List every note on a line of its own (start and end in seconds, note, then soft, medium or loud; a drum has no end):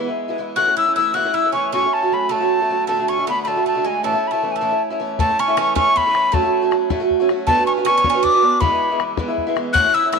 0.08 0.29 G#3 soft
0.08 0.28 B3 medium
0.08 0.27 E4 medium
0.28 0.38 G#3 medium
0.28 0.38 B3 medium
0.28 0.38 E4 medium
0.38 0.56 E3 medium
0.38 0.57 G#3 medium
0.38 0.57 B3 medium
0.38 0.57 E4 medium
0.56 0.67 A2 medium
0.56 0.67 E3 medium
0.56 0.67 A3 medium
0.56 0.67 C#4 medium
0.56 0.65 E4 medium
0.56 0.76 F#4 medium
0.56 0.75 F#6 medium
0.67 0.87 A3 soft
0.67 0.87 C#4 soft
0.67 0.85 E4 soft
0.77 0.94 E4 medium
0.77 0.95 E6 medium
0.86 0.96 A3 soft
0.86 0.97 C#4 medium
0.86 0.96 E4 soft
0.96 1.15 E3 soft
0.96 1.14 A3 soft
0.96 1.15 C#4 medium
0.96 1.13 E4 medium
0.96 1.15 E4 medium
0.96 1.16 E6 loud
1.14 1.25 A2 medium
1.14 1.25 E3 medium
1.14 1.25 A3 medium
1.14 1.24 C#4 medium
1.14 1.24 E4 medium
1.14 1.33 F#4 medium
1.14 1.36 F#6 medium
1.25 1.45 A3 soft
1.25 1.44 C#4 soft
1.25 1.43 E4 medium
1.34 1.52 E4 medium
1.34 1.53 E6 medium
1.44 1.53 A3 soft
1.44 1.54 C#4 soft
1.44 1.54 E4 soft
1.52 1.73 E3 medium
1.52 1.72 A3 medium
1.52 1.70 C#4 medium
1.52 1.73 C#4 medium
1.52 1.74 E4 medium
1.52 1.71 C#6 medium
1.72 1.83 A2 medium
1.72 1.83 F#3 medium
1.72 1.83 A3 medium
1.72 2.29 C#4 medium
1.72 1.83 C#4 medium
1.72 1.82 F#4 medium
1.72 1.95 C#6 loud
1.84 2.04 A3 soft
1.84 2.03 C#4 soft
1.84 2.01 F#4 soft
1.93 2.15 A5 medium
2.03 2.11 A3 soft
2.03 2.12 C#4 medium
2.03 2.12 F#4 medium
2.12 2.30 F#3 medium
2.12 2.30 A3 medium
2.12 2.31 C#4 medium
2.12 2.31 F#4 medium
2.12 2.33 B5 medium
2.29 2.41 A2 medium
2.29 2.41 F#3 medium
2.29 2.84 A3 medium
2.29 2.41 A3 medium
2.29 2.41 C#4 medium
2.29 2.40 F#4 medium
2.29 2.87 A5 medium
2.41 2.61 A3 soft
2.41 2.60 C#4 medium
2.41 2.59 F#4 medium
2.60 2.70 A3 soft
2.60 2.70 C#4 soft
2.60 2.70 F#4 medium
2.70 2.89 F#3 medium
2.70 2.88 A3 medium
2.70 2.89 C#4 medium
2.70 2.88 F#4 medium
2.87 2.98 D2 medium
2.87 2.99 A2 medium
2.87 2.99 D3 medium
2.87 3.08 A3 medium
2.87 2.99 A3 medium
2.87 2.99 D4 medium
2.87 2.98 F#4 medium
2.87 3.10 A5 medium
2.99 3.19 D3 soft
2.99 3.19 A3 soft
2.99 3.18 D4 soft
2.99 3.17 F#4 medium
3.08 3.26 C#4 medium
3.08 3.27 C#6 medium
3.18 3.27 D3 soft
3.18 3.28 A3 soft
3.18 3.28 D4 medium
3.18 3.27 F#4 medium
3.27 3.46 D3 soft
3.27 3.47 A3 medium
3.27 3.44 B3 medium
3.27 3.47 D4 medium
3.27 3.47 F#4 soft
3.27 3.41 B5 medium
3.43 3.56 D2 medium
3.43 3.56 A2 medium
3.43 3.65 A3 medium
3.43 3.49 B5 medium
3.48 3.57 D3 medium
3.48 3.56 A3 medium
3.48 3.56 D4 medium
3.48 3.55 F#4 medium
3.48 3.67 A5 medium
3.56 3.76 D3 soft
3.56 3.76 A3 medium
3.56 3.75 D4 soft
3.56 3.74 F#4 medium
3.66 3.83 A3 medium
3.66 3.88 A5 medium
3.75 3.83 D3 soft
3.75 3.84 A3 medium
3.75 3.85 D4 medium
3.75 3.85 F#4 medium
3.84 4.03 D3 soft
3.84 4.04 G#3 medium
3.84 4.03 A3 medium
3.84 4.04 D4 medium
3.84 4.04 F#4 medium
3.84 4.04 G#5 medium
4.03 4.13 A2 medium
4.03 4.14 E3 medium
4.03 4.14 A3 medium
4.03 4.28 A3 medium
4.03 4.13 C#4 medium
4.03 4.12 E4 medium
4.03 4.29 A5 medium
4.13 4.34 A3 soft
4.13 4.33 C#4 soft
4.13 4.32 E4 medium
4.27 4.54 A3 medium
4.27 4.33 B5 medium
4.32 4.42 A3 soft
4.32 4.43 C#4 soft
4.32 4.42 E4 medium
4.32 4.53 A5 medium
4.43 4.60 E3 medium
4.43 4.60 A3 medium
4.43 4.61 C#4 soft
4.43 4.61 E4 soft
4.51 4.58 G#5 medium
4.56 4.80 A3 medium
4.56 4.82 A5 medium
4.61 4.71 A2 medium
4.61 4.71 E3 medium
4.61 4.71 A3 medium
4.61 4.71 C#4 medium
4.61 4.69 E4 medium
4.70 4.91 A3 soft
4.70 4.90 C#4 soft
4.70 4.89 E4 medium
4.90 4.99 A3 soft
4.90 5.00 C#4 soft
4.90 5.00 E4 medium
5.00 5.18 E3 medium
5.00 5.19 A3 medium
5.00 5.19 C#4 medium
5.00 5.19 E4 medium
5.19 5.29 A2 medium
5.19 5.29 E3 medium
5.19 5.38 A3 medium
5.19 5.29 A3 medium
5.19 5.29 C#4 medium
5.19 5.28 E4 medium
5.19 5.41 A5 loud
5.19 bodhran medium
5.29 5.49 A3 soft
5.29 5.48 C#4 soft
5.29 5.46 E4 medium
5.39 5.56 C#4 medium
5.39 5.58 C#6 medium
5.48 5.56 A3 soft
5.48 5.57 C#4 soft
5.48 5.57 E4 medium
5.57 5.75 E3 medium
5.57 5.75 A3 medium
5.57 5.74 C#4 medium
5.57 5.75 C#4 medium
5.57 5.76 E4 medium
5.57 5.76 C#6 loud
5.57 bodhran medium
5.75 5.86 A2 medium
5.75 5.86 E3 medium
5.75 5.86 A3 medium
5.75 5.94 C#4 loud
5.75 5.86 C#4 medium
5.75 5.84 E4 medium
5.75 5.99 C#6 loud
5.75 bodhran medium
5.86 6.06 A3 soft
5.86 6.06 C#4 soft
5.86 6.05 E4 medium
5.96 6.30 B3 medium
5.96 6.35 B5 loud
5.96 bodhran soft
6.06 6.14 A3 medium
6.06 6.14 C#4 medium
6.06 6.15 E4 medium
6.14 6.33 E3 medium
6.14 6.32 A3 medium
6.14 6.32 C#4 medium
6.14 6.34 E4 medium
6.14 bodhran medium
6.32 6.43 A2 medium
6.32 6.43 F#3 medium
6.32 6.73 A3 medium
6.32 6.43 A3 medium
6.32 6.43 C#4 medium
6.32 6.42 F#4 medium
6.32 6.77 A5 medium
6.32 bodhran medium
6.43 6.62 A3 soft
6.43 6.63 C#4 soft
6.43 6.61 F#4 medium
6.62 6.71 A3 medium
6.62 6.71 C#4 soft
6.62 6.71 F#4 medium
6.71 6.89 F#3 medium
6.71 6.90 A3 medium
6.71 6.89 C#4 medium
6.71 6.90 F#4 medium
6.71 bodhran medium
6.90 7.00 A2 medium
6.90 7.00 F#3 medium
6.90 7.00 A3 medium
6.90 7.00 C#4 medium
6.90 6.99 F#4 medium
6.90 bodhran medium
7.00 7.20 A3 medium
7.00 7.20 C#4 medium
7.00 7.19 F#4 medium
7.11 bodhran soft
7.20 7.29 A3 medium
7.20 7.29 C#4 medium
7.20 7.29 F#4 medium
7.29 7.47 F#3 medium
7.29 7.48 A3 medium
7.29 7.48 C#4 medium
7.29 7.47 F#4 medium
7.29 bodhran medium
7.47 7.67 A3 medium
7.47 7.57 B3 medium
7.47 7.58 D4 medium
7.47 7.57 F#4 medium
7.47 7.56 B4 medium
7.47 7.66 A5 loud
7.47 bodhran medium
7.57 7.77 D4 soft
7.57 7.77 F#4 soft
7.57 7.76 B4 medium
7.67 7.84 C#4 medium
7.67 7.73 C#6 medium
7.77 7.86 D4 soft
7.77 7.86 F#4 soft
7.77 7.86 B4 medium
7.85 8.03 B3 medium
7.85 7.96 C#4 medium
7.85 8.04 D4 medium
7.85 8.04 F#4 medium
7.85 8.04 B4 medium
7.85 8.25 C#6 loud
7.85 bodhran medium
7.97 8.08 C#4 medium
8.04 8.14 B3 medium
8.04 8.14 D4 medium
8.04 8.14 F#4 medium
8.04 8.13 B4 medium
8.04 bodhran medium
8.10 8.22 C#4 medium
8.14 8.34 D4 soft
8.14 8.34 F#4 medium
8.14 8.33 B4 medium
8.23 8.58 D4 medium
8.23 8.62 D6 loud
8.23 bodhran soft
8.34 8.42 D4 soft
8.34 8.43 F#4 medium
8.34 8.43 B4 medium
8.42 8.60 B3 medium
8.42 8.61 D4 medium
8.42 8.61 F#4 medium
8.42 8.62 B4 medium
8.60 8.71 E3 medium
8.60 8.71 G#3 medium
8.60 9.01 B3 medium
8.60 8.71 B3 medium
8.60 8.70 E4 loud
8.60 9.04 B5 loud
8.60 bodhran medium
8.71 8.91 G#3 soft
8.71 8.90 B3 soft
8.71 8.89 E4 medium
8.90 8.99 G#3 soft
8.90 9.00 B3 medium
8.90 8.99 E4 soft
8.99 9.17 E3 medium
8.99 9.18 G#3 soft
8.99 9.18 B3 medium
8.99 9.19 E4 medium
8.99 bodhran medium
9.17 9.28 E3 medium
9.17 9.28 G#3 medium
9.17 9.28 B3 medium
9.17 9.27 E4 medium
9.17 bodhran medium
9.28 9.47 G#3 medium
9.28 9.47 B3 soft
9.28 9.46 E4 medium
9.38 bodhran soft
9.47 9.55 G#3 medium
9.47 9.56 B3 medium
9.47 9.56 E4 medium
9.56 9.74 E3 medium
9.56 9.75 G#3 medium
9.56 9.75 B3 medium
9.56 9.75 E4 medium
9.56 bodhran medium
9.73 9.84 A2 medium
9.73 9.85 E3 medium
9.73 9.85 A3 medium
9.73 9.84 C#4 medium
9.73 9.83 E4 medium
9.73 9.92 F#4 medium
9.73 9.96 F#6 loud
9.73 bodhran medium
9.84 10.04 A3 soft
9.84 10.03 C#4 soft
9.84 10.02 E4 soft
9.94 10.11 E4 medium
9.94 10.12 E6 loud
10.03 10.12 A3 soft
10.03 10.12 C#4 soft
10.03 10.12 E4 medium
10.12 10.19 E3 soft
10.12 10.19 A3 medium
10.12 10.19 C#4 medium
10.12 10.19 E4 medium
10.12 10.19 E6 loud
10.12 bodhran medium